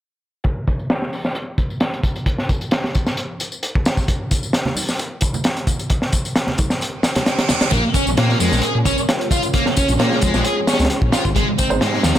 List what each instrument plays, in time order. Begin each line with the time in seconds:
0.44 kick, closed hi-hat, tambourine
0.67 kick, closed hi-hat, tambourine
0.79 tambourine
0.90 snare, closed hi-hat, tambourine
1.02 snare
1.13 open hi-hat, tambourine
1.25 snare, tambourine
1.35 closed hi-hat, tambourine
1.58 kick, closed hi-hat, tambourine
1.70 tambourine
1.80 snare, closed hi-hat, tambourine
1.93 closed hi-hat
2.04 kick, closed hi-hat, tambourine
2.16 closed hi-hat, tambourine
2.26 kick, closed hi-hat, tambourine
2.38 snare
2.49 kick, closed hi-hat, tambourine
2.61 closed hi-hat, tambourine
2.71 snare, closed hi-hat, tambourine
2.84 snare
2.95 kick, closed hi-hat, tambourine
3.06 snare, tambourine
3.17 closed hi-hat, tambourine
3.40 closed hi-hat, tambourine
3.52 tambourine
3.63 closed hi-hat, tambourine
3.75 kick
3.85 snare, closed hi-hat, tambourine
3.97 kick, tambourine
4.08 kick, closed hi-hat, tambourine
4.31 kick, closed hi-hat, tambourine
4.43 tambourine
4.53 snare, closed hi-hat, tambourine
4.65 snare, low conga
4.76 open hi-hat, tambourine, high conga
4.89 snare, tambourine
4.99 closed hi-hat, tambourine
5.21 kick, closed hi-hat, tambourine
5.33 tambourine, high conga, low conga
5.44 snare, closed hi-hat, tambourine
5.57 closed hi-hat
5.67 kick, closed hi-hat, tambourine, low conga
5.79 closed hi-hat, tambourine
5.90 kick, closed hi-hat, tambourine
6.02 snare
6.12 kick, closed hi-hat, tambourine
6.25 closed hi-hat, tambourine
6.36 snare, closed hi-hat, tambourine
6.47 snare, low conga
6.58 kick, closed hi-hat, tambourine, high conga
6.70 snare, tambourine
6.81 closed hi-hat, tambourine, reverse cymbal
7.03 snare, closed hi-hat, tambourine
7.15 snare, closed hi-hat, tambourine, high conga, low conga
7.26 snare, closed hi-hat, tambourine
7.39 snare, closed hi-hat
7.49 snare, closed hi-hat, tambourine, low conga
7.61 snare, closed hi-hat, tambourine, high conga
7.72 detuned saw bass A#1, analog synth pad G#3 C#4 F4 A#4 C#5, distorted electric guitar A#3, kick, closed hi-hat, tambourine
7.94 distorted electric guitar C#4, kick, closed hi-hat, tambourine
8.07 detuned saw bass A#1, tambourine
8.17 detuned saw bass A#2, distorted electric guitar A#3, snare, closed hi-hat, tambourine
8.29 snare
8.40 detuned saw bass F2, distorted electric guitar G#3, open hi-hat, tambourine
8.52 detuned saw bass A#1, snare, tambourine
8.62 detuned saw bass A#2, distorted electric guitar G#4, closed hi-hat, tambourine
8.75 detuned saw bass A#2
8.85 detuned saw bass A#1, distorted electric guitar C#4, kick, closed hi-hat, tambourine
8.98 tambourine
9.09 snare, closed hi-hat, tambourine
9.21 closed hi-hat
9.31 distorted electric guitar F4, kick, closed hi-hat, tambourine
9.42 closed hi-hat, tambourine
9.54 distorted electric guitar A#3, analog synth pad G#4, kick, closed hi-hat, tambourine
9.66 snare
9.77 distorted electric guitar C#4, kick, closed hi-hat, tambourine
9.88 detuned saw bass A#1, closed hi-hat, tambourine
9.99 detuned saw bass A#2, distorted electric guitar A#3, snare, closed hi-hat, tambourine
10.12 snare
10.21 detuned saw bass F2, distorted electric guitar G#3, kick, closed hi-hat, tambourine
10.34 detuned saw bass A#1, snare, tambourine
10.45 distorted electric guitar G#4, closed hi-hat, tambourine
10.67 distorted electric guitar C#4, snare, closed hi-hat, tambourine
10.73 snare, closed hi-hat
10.79 detuned saw bass C#2, snare, closed hi-hat, tambourine
10.85 snare, closed hi-hat
10.90 closed hi-hat, tambourine
11.02 detuned saw bass A#1, kick
11.12 distorted electric guitar F4, snare, closed hi-hat, tambourine
11.25 detuned saw bass G#1, kick, tambourine
11.35 detuned saw bass G#1, distorted electric guitar G#3, analog synth pad C4 D#4 C5 D#5, kick, closed hi-hat, tambourine
11.58 distorted electric guitar C4, kick, closed hi-hat, tambourine
11.70 detuned saw bass G#1, grand piano G#3 C4 D#4 C5, tambourine
11.81 detuned saw bass G#2, distorted electric guitar G#3, snare, closed hi-hat, tambourine
11.93 snare
12.03 detuned saw bass D#2, distorted electric guitar F3, snare, closed hi-hat, tambourine
12.15 snare, closed hi-hat